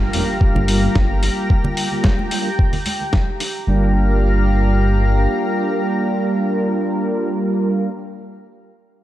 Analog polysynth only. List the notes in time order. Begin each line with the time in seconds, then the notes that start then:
Already playing: G3 A#3 D4 F4 A#4
0.13 G3 A#3 D4 F4 A#4
0.40 G3 A#3 D4 F4 A#4
0.67 G3 A#3 D4 F4 A#4
1.91 G3 A#3 D4 F4 A#4
2.31 G3 A#3 D4 F4 A#4
3.67 G3 A#3 D4 F4 A#4